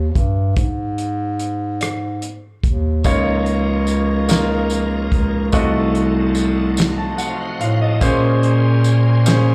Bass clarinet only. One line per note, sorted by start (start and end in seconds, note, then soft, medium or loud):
0.00 0.17 D#2 medium
0.15 0.53 G2 medium
0.56 2.32 G#2 medium
2.63 3.01 D#2 medium
3.05 5.08 C#2 medium
5.12 5.50 C#2 medium
5.53 7.29 C2 medium
7.60 7.98 A2 medium
8.02 9.55 A#2 medium